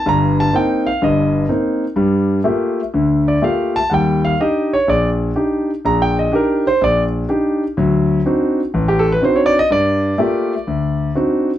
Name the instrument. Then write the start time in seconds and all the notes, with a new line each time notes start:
grand piano
0.06 G1 G2 A#5
0.40 A5
0.53 A#3 C4 D#4 G5
0.87 F5
1.02 G1 G2 D#5
1.49 A#3 C4 D#4
1.96 G2 G3
2.44 A3 A#3 F4 G4
2.94 D2 D3
3.28 D5
3.42 A3 A#3 F4 G4 F5
3.76 A5
3.90 D#2 G3 F#5
3.94 G5
4.25 F5
4.40 D4 D#4 G4 D#5
4.73 C#5
4.88 A#1 D5
5.36 D4 D#4 G4
5.85 A#1 A#5
6.02 G5
6.19 D#5
6.32 D4 D#4 G4 A#4
6.67 C5
6.81 A#1 D5
7.29 D4 D#4 G4
7.77 D2 F#3
8.26 C4 D4 D#4 F#4
8.74 A1
8.88 G4
8.99 A4
9.12 B4
9.21 C4 D4 D#4 F#4 C5
9.36 C#5
9.46 D5
9.59 D#5
9.70 G2 D5
10.18 A3 A#3 F4 G4
10.67 D2
11.15 C4 D4 D#4 F#4